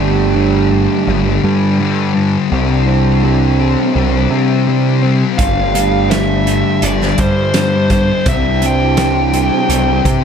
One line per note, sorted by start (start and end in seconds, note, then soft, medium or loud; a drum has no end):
0.00 0.87 G1 loud
0.00 0.33 G2 medium
0.00 0.33 D3 medium
0.00 0.36 G3 medium
0.00 2.50 G3 medium
0.00 2.51 A3 medium
0.00 2.51 D4 medium
0.00 2.52 G4 medium
0.34 1.06 G2 medium
0.34 0.71 D3 medium
0.34 0.70 G3 medium
0.71 1.07 D3 medium
0.71 1.09 G3 medium
1.07 1.38 G1 medium
1.07 1.77 G2 medium
1.07 1.43 D3 medium
1.07 1.42 G3 medium
1.43 2.36 G2 medium
1.43 1.78 D3 medium
1.43 1.80 G3 medium
1.78 2.49 G2 medium
1.78 2.15 D3 medium
1.78 2.14 G3 medium
2.14 2.50 D3 medium
2.14 2.51 G3 medium
2.50 3.75 C2 medium
2.50 5.38 C3 medium
2.50 3.22 C3 medium
2.50 5.37 E3 medium
2.50 2.89 G3 medium
2.50 5.38 C4 medium
2.50 2.86 C4 loud
2.50 5.39 D4 medium
2.50 5.40 G4 medium
2.87 3.24 G3 medium
2.87 3.24 C4 medium
3.23 3.93 C3 medium
3.23 3.60 G3 medium
3.23 3.58 C4 medium
3.59 3.95 G3 medium
3.59 3.95 C4 medium
3.94 4.26 C2 medium
3.94 4.66 C3 medium
3.94 4.32 G3 loud
3.94 4.29 C4 medium
4.30 5.23 C3 medium
4.30 4.67 G3 medium
4.30 4.67 C4 medium
4.67 5.37 C3 medium
4.67 5.04 G3 medium
4.67 5.01 C4 medium
5.03 5.39 G3 medium
5.03 5.36 C4 medium
5.37 6.62 G1 loud
5.37 6.09 G2 medium
5.37 5.75 D3 medium
5.37 8.27 G3 medium
5.37 5.74 G3 loud
5.37 8.25 A3 medium
5.37 8.28 D4 medium
5.37 8.29 G4 medium
5.37 6.11 F5 medium
5.37 kick loud
5.37 closed hi-hat loud
5.75 6.10 D3 medium
5.75 6.12 G3 medium
5.75 closed hi-hat medium
6.10 6.82 G2 medium
6.10 6.48 D3 medium
6.10 6.47 G3 medium
6.10 6.84 E5 medium
6.10 snare loud
6.10 closed hi-hat medium
6.47 6.82 D3 medium
6.47 6.84 G3 medium
6.47 closed hi-hat medium
6.82 7.13 G1 medium
6.82 7.54 G2 medium
6.82 7.19 D3 medium
6.82 7.18 G3 loud
6.82 7.20 D5 medium
6.82 closed hi-hat medium
7.01 snare soft
7.18 8.11 G2 loud
7.18 7.54 D3 medium
7.18 7.56 G3 medium
7.18 7.90 C5 medium
7.18 kick medium
7.18 closed hi-hat medium
7.54 8.24 G2 medium
7.54 7.91 D3 medium
7.54 7.91 G3 medium
7.54 snare loud
7.54 closed hi-hat medium
7.90 8.25 D3 medium
7.90 8.26 G3 medium
7.90 8.27 C5 medium
7.90 kick medium
7.90 closed hi-hat medium
8.26 9.49 C2 loud
8.26 8.97 C3 medium
8.26 10.24 C3 medium
8.26 10.24 E3 medium
8.26 8.63 G3 medium
8.26 10.24 C4 medium
8.26 8.61 C4 loud
8.26 10.24 D4 medium
8.26 10.24 G4 medium
8.26 8.64 E5 loud
8.26 kick loud
8.26 closed hi-hat loud
8.62 8.98 G3 medium
8.62 8.98 C4 medium
8.62 closed hi-hat medium
8.66 10.24 G5 medium
8.97 9.68 C3 medium
8.97 9.34 G3 medium
8.97 9.32 C4 medium
8.97 snare loud
8.97 closed hi-hat medium
9.33 9.70 G3 medium
9.33 9.70 C4 medium
9.33 closed hi-hat medium
9.69 10.00 C2 loud
9.69 10.24 C3 medium
9.69 10.06 G3 loud
9.69 10.03 C4 loud
9.69 closed hi-hat medium
10.05 10.24 C3 loud
10.05 10.24 G3 medium
10.05 10.24 C4 medium
10.05 kick medium
10.05 closed hi-hat medium